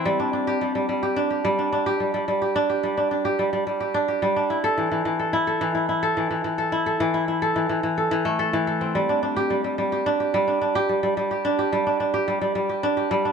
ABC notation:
X:1
M:4/4
L:1/16
Q:1/4=108
K:Ador
V:1 name="Kora"
G, D D G G, G, G, G D G G, D D G G, G, | G, G D G G, D D G G, G, G, G D G G, D | E A E, E, E, A E A E, E E A E, E, E, A | E A E, E E A E, E, E, A E, A, A E, A C |
G, D D G G, G, G, G D G G, D D G G, G, | G, G D G G, D D G G, G, G, G D G G, D |]